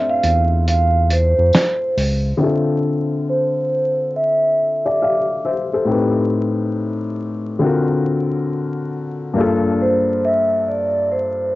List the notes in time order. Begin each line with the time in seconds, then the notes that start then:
Already playing: A3 C4 D4 F4
0.09 F5
0.23 E2, closed hi-hat
0.68 F5, closed hi-hat
1.10 C5, closed hi-hat
1.39 F2
1.53 snare, closed hi-hat, tambourine
1.97 C#2, open hi-hat
2.37 D3 C4 E5
2.42 F4 A4
3.29 C5
4.16 E5
4.86 D5
5.02 D5 F5
5.45 C5 E5
5.73 A4 C5
5.85 A2 C4 D#4
5.90 G4 B4
7.59 D3 C4 F4
7.64 F#4 A#4
9.34 G2 A#3 D4
9.38 F4 A4
9.82 C5
10.25 E5
10.68 D5
11.11 C5